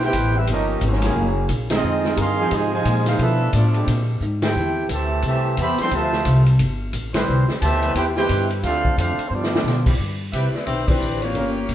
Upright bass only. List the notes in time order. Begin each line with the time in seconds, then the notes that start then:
Already playing: B1
0.13 A1
0.47 G1
0.82 G#1
1.15 F#1
1.50 A#1
1.83 F2
2.17 G2
2.51 G#2
2.85 A#2
3.19 B2
3.53 A2
3.87 A#2
4.21 G#2
4.56 E2
4.89 D2
5.23 C2
5.57 E2
5.80 muted upright bass stroke
5.91 D2
6.26 C2
6.60 G1
6.93 A1
7.28 C2
7.50 muted upright bass stroke
7.62 D2
7.95 E2
8.29 G2
8.63 D2
8.98 F2
9.18 muted upright bass stroke
9.30 G2
9.64 B2
9.99 G2
10.33 C2
10.53 muted upright bass stroke
10.67 B1
11.00 A1
11.34 G1
11.69 A#1